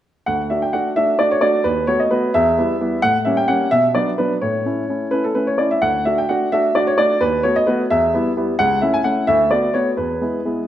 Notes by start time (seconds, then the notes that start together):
0.26 D2 F#5
0.50 A3 D4 F#4 E5
0.62 G5
0.73 A3 D4 F#4 F#5
0.96 A3 D4 F#4 E5
1.19 A3 D4 F#4 D5
1.31 C#5
1.41 A3 D4 F#4 D5
1.64 D#2 B4
1.87 A3 B3 F#4 C#5
2.00 D#5
2.11 A3 B3 F#4 B4
2.34 E2 E5
2.58 G3 B3 E4
2.81 G3 B3 E4
3.02 A2 F#5
3.25 G3 A#3 C#4 E5
3.37 G5
3.48 G3 A#3 C#4 F#5
3.71 B2 E5
3.95 F#3 B3 D4 D5
4.18 F#3 B3 D4 B4
4.41 A2 C#5
4.65 A3 C#4 E4
4.89 A3 C#4 E4
5.11 A3 C#4 E4 B4
5.24 A4
5.35 A3 C#4 E4 B4
5.47 C#5
5.58 A3 C#4 E4 D5
5.71 E5
5.82 D2 F#5
6.05 A3 D4 F#4 E5
6.18 G5
6.29 A3 D4 F#4 F#5
6.52 A3 D4 F#4 E5
6.75 A3 D4 F#4 D5
6.87 C#5
6.98 A3 D4 F#4 D5
7.21 D#2 B4
7.43 A3 B3 F#4 C#5
7.56 D#5
7.67 A3 B3 F#4 B4
7.90 E2 E5
8.14 G3 B3 E4
8.37 G3 B3 E4
8.59 C#2 F#5
8.81 A3 C#4 E4 E5
8.94 G#5
9.04 A3 C#4 E4 F#5
9.27 D2 E5
9.51 A3 B3 F#4 D5
9.74 A3 B3 F#4 C#5
9.97 E2 B4
10.21 G#3 B3 E4
10.45 G#3 B3 E4